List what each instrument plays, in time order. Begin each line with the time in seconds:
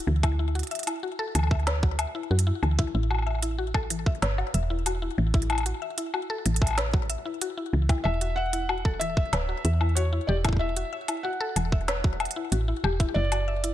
0.07 fm bass D2, synth arpeggio sound E3
0.23 synth arpeggio sound E4, kick, closed hi-hat, high woodblock
0.39 synth arpeggio sound E4
0.55 synth arpeggio sound F#4, closed hi-hat
0.59 closed hi-hat
0.63 closed hi-hat
0.67 closed hi-hat
0.71 synth arpeggio sound E5, closed hi-hat
0.75 closed hi-hat
0.79 closed hi-hat
0.83 synth arpeggio sound E4, closed hi-hat
0.87 closed hi-hat, high woodblock
1.03 synth arpeggio sound F#4
1.19 synth arpeggio sound A4
1.35 fm bass D2, synth arpeggio sound E3, closed hi-hat, high woodblock
1.39 high woodblock
1.43 high woodblock
1.47 synth arpeggio sound E5, high woodblock
1.51 kick, high woodblock
1.55 high woodblock
1.59 high woodblock
1.63 synth arpeggio sound B4, snare, closed hi-hat, high woodblock
1.83 synth arpeggio sound F#4, kick
1.99 synth arpeggio sound E5, closed hi-hat, high woodblock
2.15 synth arpeggio sound E4
2.31 fm bass F#2, synth arpeggio sound F#4
2.39 closed hi-hat
2.47 synth arpeggio sound E4
2.63 fm bass D2, synth arpeggio sound E3, high woodblock
2.79 synth arpeggio sound E4, kick, closed hi-hat
2.95 fm bass A1, synth arpeggio sound E4
3.11 synth arpeggio sound F#4, high woodblock
3.15 high woodblock
3.19 high woodblock
3.22 high woodblock
3.26 synth arpeggio sound E5, high woodblock
3.31 high woodblock
3.35 high woodblock
3.38 high woodblock
3.42 synth arpeggio sound E4, closed hi-hat
3.58 synth arpeggio sound F#4
3.74 synth arpeggio sound A4, kick, high woodblock
3.90 synth arpeggio sound E3, closed hi-hat
4.06 synth arpeggio sound E5, kick
4.22 fm bass G1, synth arpeggio sound B4, snare, closed hi-hat
4.38 synth arpeggio sound F#4, high woodblock
4.54 fm bass E1, synth arpeggio sound E5, closed hi-hat
4.70 synth arpeggio sound E4
4.86 synth arpeggio sound F#4, closed hi-hat, high woodblock
5.02 synth arpeggio sound E4
5.18 fm bass A1, synth arpeggio sound E3
5.34 synth arpeggio sound E4, kick, closed hi-hat
5.42 closed hi-hat
5.50 synth arpeggio sound E4, closed hi-hat, high woodblock
5.52 high woodblock
5.55 closed hi-hat, high woodblock
5.58 high woodblock
5.61 high woodblock
5.63 synth arpeggio sound F#4, closed hi-hat, high woodblock
5.82 synth arpeggio sound E5
5.98 synth arpeggio sound E4, closed hi-hat
6.14 synth arpeggio sound F#4, high woodblock
6.30 synth arpeggio sound A4
6.46 fm bass A1, synth arpeggio sound E3, closed hi-hat
6.56 closed hi-hat
6.62 synth arpeggio sound E5, kick, high woodblock
6.64 high woodblock
6.66 closed hi-hat, high woodblock
6.68 high woodblock
6.71 high woodblock
6.73 high woodblock
6.75 synth arpeggio sound B4, snare, closed hi-hat, high woodblock
6.94 synth arpeggio sound F#4, kick
7.10 synth arpeggio sound E5, closed hi-hat
7.25 synth arpeggio sound E4
7.41 synth arpeggio sound F#4, closed hi-hat
7.58 synth arpeggio sound E4
7.73 fm bass C#2, synth arpeggio sound E3
7.89 synth arpeggio sound E4, kick, closed hi-hat, high woodblock
8.04 fm bass E1, synth arpeggio sound E4, felt piano E5, high woodblock
8.21 synth arpeggio sound F#4, closed hi-hat
8.36 synth arpeggio sound E5, felt piano F#5
8.53 synth arpeggio sound E4, closed hi-hat
8.69 synth arpeggio sound F#4, high woodblock
8.85 synth arpeggio sound A4, kick
9.00 synth arpeggio sound E3, felt piano E5, closed hi-hat
9.17 synth arpeggio sound E5, kick
9.33 fm bass D1, synth arpeggio sound B4, snare, closed hi-hat, high woodblock
9.49 synth arpeggio sound F#4
9.65 fm bass E2, synth arpeggio sound E5, closed hi-hat
9.81 synth arpeggio sound E4, high woodblock
9.95 synth arpeggio sound F#4, felt piano C#5, closed hi-hat
10.13 synth arpeggio sound E4
10.27 fm bass E1, synth arpeggio sound G4, felt piano D5
10.45 synth arpeggio sound E4, kick, closed hi-hat, high woodblock
10.49 kick
10.53 kick
10.57 felt piano E5, kick
10.61 synth arpeggio sound E4
10.76 synth arpeggio sound F#4, closed hi-hat
10.93 synth arpeggio sound E5
11.08 synth arpeggio sound E4, closed hi-hat, high woodblock
11.23 synth arpeggio sound F#4, felt piano F#5
11.41 synth arpeggio sound A4
11.56 fm bass E1, synth arpeggio sound E3, closed hi-hat, high woodblock
11.72 synth arpeggio sound E5, kick
11.88 synth arpeggio sound B4, snare, closed hi-hat
12.04 synth arpeggio sound F#4, kick
12.20 synth arpeggio sound E5, closed hi-hat, high woodblock
12.25 closed hi-hat
12.31 closed hi-hat
12.36 synth arpeggio sound E4
12.52 fm bass A1, synth arpeggio sound F#4, closed hi-hat
12.68 synth arpeggio sound E4
12.84 fm bass E1, synth arpeggio sound G4, high woodblock
13.00 synth arpeggio sound E4, kick, closed hi-hat
13.14 fm bass F#1, synth arpeggio sound E4, felt piano D5
13.32 synth arpeggio sound F#4, closed hi-hat, high woodblock
13.48 synth arpeggio sound E5
13.64 synth arpeggio sound E4, closed hi-hat